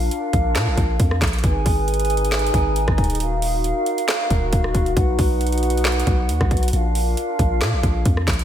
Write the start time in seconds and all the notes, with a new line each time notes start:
Already playing: D4 F4 A#4 F5
0.11 closed hi-hat
0.33 A#1, kick, closed hi-hat
0.55 A#2, cross-stick, snare, clap, closed hi-hat
0.67 A#1
0.78 A#1, kick, closed hi-hat
1.00 F2, kick, closed hi-hat
1.11 cross-stick
1.22 A#1, kick, snare, clap, closed hi-hat
1.28 closed hi-hat
1.33 closed hi-hat
1.39 closed hi-hat
1.44 G#1 D#4 G#4 B4 G#5, kick, closed hi-hat
1.66 G#1, kick, open hi-hat
1.88 closed hi-hat
1.94 closed hi-hat
2.00 closed hi-hat
2.05 closed hi-hat
2.10 closed hi-hat
2.17 closed hi-hat
2.25 closed hi-hat
2.32 snare, clap, closed hi-hat
2.39 closed hi-hat
2.47 closed hi-hat
2.54 G#1, kick, closed hi-hat
2.76 closed hi-hat
2.88 G#1, kick, cross-stick
2.98 D#1, kick, closed hi-hat
3.04 closed hi-hat
3.10 closed hi-hat
3.15 closed hi-hat
3.20 F#4 A#4 F5, closed hi-hat
3.42 open hi-hat
3.64 closed hi-hat
3.86 closed hi-hat
3.98 closed hi-hat
4.08 snare, clap, closed hi-hat
4.30 D#1, kick, closed hi-hat
4.53 D#1, kick, closed hi-hat
4.64 cross-stick
4.75 D#1, kick, closed hi-hat
4.86 closed hi-hat
4.97 B1 D#4 B4 F#5, kick, closed hi-hat
5.19 B1, kick, open hi-hat
5.41 closed hi-hat
5.47 closed hi-hat
5.52 closed hi-hat
5.58 closed hi-hat
5.63 closed hi-hat
5.70 closed hi-hat
5.77 closed hi-hat
5.85 snare, clap, closed hi-hat
5.92 closed hi-hat
6.00 closed hi-hat
6.07 B1, kick, closed hi-hat
6.29 D#2, closed hi-hat
6.41 B1, kick, cross-stick
6.51 kick, closed hi-hat
6.57 closed hi-hat
6.63 closed hi-hat
6.68 closed hi-hat
6.73 A#1 D4 F4 A#4 F5, closed hi-hat
6.95 open hi-hat
7.17 closed hi-hat
7.39 A#1, kick, closed hi-hat
7.61 A#2, cross-stick, snare, clap, closed hi-hat
7.73 A#1
7.83 A#1, kick, closed hi-hat
8.05 F2, kick, closed hi-hat
8.17 cross-stick
8.28 A#1, kick, snare, clap, closed hi-hat
8.33 closed hi-hat
8.39 closed hi-hat